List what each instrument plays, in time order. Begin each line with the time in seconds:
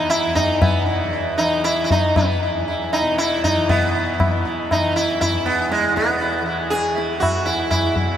Already playing: tanpura E2 B2 E3
0.10 sitar E4, tabla na
0.26 tanpura E2
0.35 sitar D#4, tabla tin, tabla ge
0.62 sitar B3, tabla na, tabla ge
0.81 tanpura B2
0.86 sitar E4
1.13 sitar E4
1.36 tanpura E3, sitar D#4, tabla na
1.64 sitar E4, tabla na
1.84 sitar E4
1.90 tanpura E3, sitar D#4, tabla tin, tabla ge
2.16 sitar B3, tabla na, tabla ge
2.43 sitar E4
2.48 tanpura E2
2.68 sitar E4
2.93 sitar D#4, tabla na
3.02 tanpura B2
3.18 sitar E4, tabla na
3.44 sitar D#4, tabla tin, tabla ge
3.56 tanpura E3
3.68 tanpura B2, sitar B3 E4, tabla tin, tabla ge
3.95 sitar E4
4.20 tanpura E3, sitar E4, tabla na, tabla ge
4.45 sitar E4, tabla ge
4.71 sitar D#4, tabla na, tabla ge
4.78 tanpura E3
4.96 sitar E4
5.21 sitar E4, tabla tin, tabla ge
5.32 tanpura E2
5.46 sitar B3
5.72 sitar G#3, tabla te
5.84 tanpura B2, tabla te
5.96 sitar B3, tabla ke
6.10 tabla te
6.21 sitar E4, tabla tin
6.41 tanpura E3
6.46 sitar E4
6.70 sitar G#4, tabla te
6.95 tanpura E3, sitar E4, tabla te
7.20 sitar F#4, tabla na, tabla ge
7.45 tanpura E2, sitar E4, tabla te
7.71 sitar E4, tabla na, tabla ge
7.96 sitar E4, tabla ge
8.01 tanpura B2